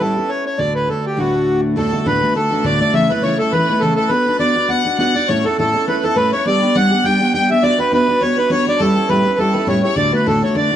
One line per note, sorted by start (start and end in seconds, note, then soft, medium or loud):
0.00 0.16 A2 medium
0.00 0.16 G3 medium
0.00 0.16 C#4 medium
0.00 0.16 E4 medium
0.00 0.15 G4 medium
0.00 0.30 A4 medium
0.16 0.59 C#4 soft
0.16 0.59 E4 soft
0.16 0.59 G4 soft
0.29 0.45 C#5 medium
0.46 0.60 C#5 medium
0.58 0.88 D2 medium
0.58 0.88 A2 medium
0.58 0.88 D3 medium
0.58 0.89 A3 medium
0.58 0.88 D4 medium
0.58 0.89 F#4 medium
0.58 0.74 D5 medium
0.75 0.89 B4 medium
0.88 1.16 D3 medium
0.88 1.19 A3 medium
0.88 1.17 D4 soft
0.88 1.19 F#4 medium
0.88 1.05 A4 medium
1.06 1.19 G4 medium
1.16 1.75 D2 medium
1.16 1.75 A2 medium
1.16 1.76 D3 medium
1.16 1.77 A3 medium
1.16 1.76 D4 medium
1.16 1.61 F#4 medium
1.16 1.77 F#4 medium
1.76 1.92 D2 medium
1.76 1.93 A2 medium
1.76 1.93 D3 medium
1.76 1.92 A3 medium
1.76 1.93 D4 medium
1.76 1.91 F#4 medium
1.76 2.07 A4 medium
1.76 2.00 A4 medium
1.92 2.05 D3 soft
1.92 2.06 A3 soft
1.92 2.05 D4 soft
1.92 2.06 F#4 soft
2.00 2.08 A4 soft
2.06 2.22 D2 medium
2.06 2.22 A2 medium
2.06 2.22 D3 medium
2.06 2.22 A3 medium
2.06 2.22 D4 medium
2.06 2.21 F#4 medium
2.06 2.34 B4 medium
2.06 2.38 B4 medium
2.22 2.34 D3 soft
2.22 2.35 A3 medium
2.22 2.34 D4 soft
2.22 2.35 F#4 medium
2.35 2.51 D3 medium
2.35 2.51 A3 medium
2.35 2.51 D4 medium
2.35 2.49 F#4 medium
2.35 2.66 A4 medium
2.35 2.67 A4 medium
2.51 2.63 D3 soft
2.51 2.63 A3 medium
2.51 2.63 D4 medium
2.51 2.64 F#4 medium
2.63 2.80 D2 medium
2.63 2.80 A2 medium
2.63 2.80 D3 medium
2.63 2.80 A3 medium
2.63 2.80 D4 medium
2.63 2.79 F#4 medium
2.63 2.79 D5 medium
2.63 2.95 D5 medium
2.80 2.93 D3 soft
2.80 2.92 A3 soft
2.80 2.93 D4 soft
2.80 2.94 F#4 medium
2.80 2.94 D5 loud
2.93 3.09 C#3 medium
2.93 3.10 E3 medium
2.93 3.10 A3 medium
2.93 3.09 C#4 medium
2.93 3.08 E4 medium
2.93 3.11 E5 medium
2.93 3.13 E5 medium
3.09 3.22 A3 soft
3.09 3.22 C#4 soft
3.09 3.22 E4 medium
3.09 3.23 B4 medium
3.09 3.25 B4 medium
3.22 3.38 C#3 medium
3.22 3.39 E3 medium
3.22 3.39 A3 medium
3.22 3.39 C#4 medium
3.22 3.38 E4 medium
3.22 3.38 C#5 medium
3.22 3.40 C#5 medium
3.39 3.52 A3 soft
3.39 3.53 C#4 medium
3.39 3.52 E4 medium
3.39 3.52 A4 medium
3.39 3.55 A4 medium
3.52 3.68 E3 medium
3.52 3.69 A3 medium
3.52 3.69 C#4 medium
3.52 3.68 E4 medium
3.52 3.82 B4 medium
3.52 3.84 B4 medium
3.69 3.81 A3 soft
3.69 3.82 C#4 soft
3.69 3.82 E4 medium
3.80 3.98 C#3 medium
3.80 3.98 E3 medium
3.80 3.98 A3 medium
3.80 3.97 C#4 medium
3.80 3.96 E4 medium
3.80 3.94 A4 medium
3.80 3.97 A4 medium
3.95 4.10 A3 soft
3.95 4.11 C#4 soft
3.95 4.10 E4 medium
3.95 4.10 A4 medium
3.95 4.12 A4 medium
4.08 4.26 B3 medium
4.08 4.27 D4 medium
4.08 4.27 F#4 medium
4.08 4.37 B4 medium
4.08 4.42 B4 medium
4.08 4.25 B4 medium
4.26 4.39 D4 soft
4.26 4.39 F#4 soft
4.26 4.39 B4 medium
4.39 4.56 B3 medium
4.39 4.56 D4 medium
4.39 4.55 F#4 medium
4.39 4.54 B4 medium
4.39 4.70 D5 medium
4.55 4.68 D4 soft
4.55 4.69 F#4 medium
4.55 4.69 B4 soft
4.69 4.85 B3 medium
4.69 4.85 D4 medium
4.69 4.85 F#4 medium
4.69 4.83 B4 medium
4.69 4.97 F#5 loud
4.69 4.97 F#5 medium
4.85 4.98 D4 soft
4.85 4.99 F#4 soft
4.85 4.98 B4 medium
4.98 5.15 B3 medium
4.98 5.15 D4 medium
4.98 5.14 F#4 medium
4.98 5.13 B4 medium
4.98 5.30 F#5 medium
4.98 5.15 F#5 loud
5.15 5.29 D4 soft
5.15 5.28 F#4 soft
5.15 5.29 D5 medium
5.28 5.44 A2 medium
5.28 5.45 A3 medium
5.28 5.45 C#4 medium
5.28 5.44 E4 medium
5.28 5.43 A4 medium
5.28 5.47 C#5 medium
5.28 5.45 C#5 medium
5.44 5.58 C#4 soft
5.44 5.58 E4 soft
5.44 5.57 A4 medium
5.44 5.58 A4 medium
5.58 5.74 A2 medium
5.58 5.74 A3 medium
5.58 5.74 C#4 medium
5.58 5.74 E4 medium
5.58 5.89 A4 medium
5.58 5.85 A4 loud
5.58 5.72 A4 medium
5.73 5.87 C#4 soft
5.73 5.87 E4 soft
5.73 5.87 A4 medium
5.88 6.03 A3 medium
5.88 6.03 C#4 medium
5.88 6.03 E4 medium
5.88 6.02 A4 medium
5.88 6.05 B4 medium
5.88 6.04 B4 medium
6.03 6.15 C#4 soft
6.03 6.16 E4 soft
6.03 6.16 A4 medium
6.03 6.17 A4 medium
6.16 6.32 A2 medium
6.16 6.32 A3 medium
6.16 6.32 C#4 medium
6.16 6.32 E4 medium
6.16 6.31 A4 medium
6.16 6.35 B4 medium
6.16 6.31 B4 loud
6.32 6.46 C#4 soft
6.32 6.46 E4 soft
6.32 6.45 A4 medium
6.32 6.46 C#5 medium
6.46 6.61 G3 medium
6.46 6.62 B3 medium
6.46 6.61 D4 medium
6.46 6.61 G4 medium
6.46 6.77 D5 medium
6.46 6.76 D5 medium
6.62 6.74 B3 soft
6.62 6.75 D4 soft
6.62 6.75 G4 medium
6.75 6.91 G3 medium
6.75 6.91 B3 medium
6.75 6.91 D4 medium
6.75 6.89 G4 medium
6.75 7.07 F#5 medium
6.75 7.06 F#5 loud
6.91 7.04 B3 soft
6.91 7.04 D4 soft
6.91 7.04 G4 soft
7.04 7.20 G3 medium
7.04 7.20 B3 medium
7.04 7.19 D4 medium
7.04 7.19 G4 medium
7.04 7.33 G5 loud
7.04 7.33 G5 medium
7.20 7.32 B3 soft
7.20 7.32 D4 soft
7.20 7.33 G4 medium
7.33 7.49 G3 medium
7.33 7.49 B3 medium
7.33 7.49 D4 medium
7.33 7.49 G4 medium
7.33 7.48 G5 medium
7.33 7.50 G5 loud
7.50 7.61 B3 soft
7.50 7.61 D4 soft
7.50 7.63 G4 soft
7.50 7.66 E5 medium
7.50 7.63 E5 medium
7.62 7.78 B3 medium
7.62 7.78 D4 medium
7.62 7.78 F#4 medium
7.62 7.77 B4 medium
7.62 7.79 D5 loud
7.62 7.81 D5 medium
7.78 7.91 D4 soft
7.78 7.92 F#4 medium
7.78 7.91 B4 soft
7.78 7.92 B4 medium
7.92 8.07 B3 medium
7.92 8.08 D4 medium
7.92 8.08 F#4 medium
7.92 8.22 B4 medium
7.92 8.07 B4 medium
7.92 8.22 B4 loud
8.08 8.21 D4 soft
8.08 8.21 F#4 soft
8.08 8.21 B4 medium
8.21 8.37 B3 medium
8.21 8.37 D4 medium
8.21 8.36 F#4 medium
8.21 8.35 B4 medium
8.21 8.49 C#5 medium
8.21 8.38 C#5 loud
8.36 8.49 D4 soft
8.36 8.50 F#4 soft
8.36 8.49 B4 medium
8.36 8.50 B4 loud
8.50 8.66 B3 medium
8.50 8.66 D4 medium
8.50 8.66 F#4 medium
8.50 8.65 B4 medium
8.50 8.77 C#5 medium
8.50 8.65 C#5 medium
8.66 8.80 D4 soft
8.66 8.79 F#4 soft
8.66 8.79 B4 medium
8.66 8.81 D5 medium
8.77 8.95 A2 medium
8.77 8.95 G3 medium
8.77 8.95 C#4 medium
8.77 8.95 E4 medium
8.77 8.93 G4 medium
8.77 8.93 A4 medium
8.77 9.10 A4 loud
8.94 9.08 C#4 soft
8.94 9.09 E4 soft
8.94 9.08 G4 soft
8.94 9.11 A4 medium
9.09 9.24 A2 medium
9.09 9.25 G3 medium
9.09 9.25 C#4 medium
9.09 9.25 E4 medium
9.09 9.23 G4 medium
9.09 9.38 B4 medium
9.09 9.39 B4 medium
9.24 9.38 C#4 soft
9.24 9.38 E4 soft
9.24 9.37 G4 soft
9.38 9.54 G3 medium
9.38 9.54 C#4 medium
9.38 9.53 E4 medium
9.38 9.52 G4 medium
9.38 9.55 A4 medium
9.38 9.68 A4 medium
9.53 9.66 C#4 soft
9.53 9.67 E4 medium
9.53 9.66 G4 medium
9.53 9.66 B4 medium
9.67 9.83 A2 medium
9.67 9.83 G3 medium
9.67 9.83 C#4 medium
9.67 9.83 E4 medium
9.67 9.82 G4 medium
9.67 9.82 C#5 medium
9.83 9.96 C#4 soft
9.83 9.96 E4 soft
9.83 9.96 G4 soft
9.83 9.97 C#5 medium
9.83 9.95 C#5 medium
9.96 10.12 D2 medium
9.96 10.12 A2 medium
9.96 10.12 D3 medium
9.96 10.12 A3 medium
9.96 10.12 D4 medium
9.96 10.11 F#4 medium
9.96 10.14 D5 medium
9.96 10.13 D5 medium
10.12 10.25 D3 soft
10.12 10.25 A3 medium
10.12 10.26 D4 medium
10.12 10.25 F#4 medium
10.12 10.25 B4 medium
10.12 10.27 B4 medium
10.26 10.41 D2 medium
10.26 10.42 A2 medium
10.26 10.42 D3 medium
10.26 10.42 A3 medium
10.26 10.42 D4 medium
10.26 10.41 F#4 medium
10.26 10.57 A4 medium
10.26 10.43 A4 medium
10.42 10.53 D3 soft
10.42 10.55 A3 soft
10.42 10.55 D4 soft
10.42 10.55 F#4 soft
10.42 10.56 C#5 medium
10.55 10.70 D3 medium
10.55 10.70 A3 medium
10.55 10.71 D4 medium
10.55 10.69 F#4 medium
10.55 10.76 D5 medium
10.71 10.76 D3 soft
10.71 10.76 A3 medium
10.71 10.76 D4 soft
10.71 10.76 F#4 medium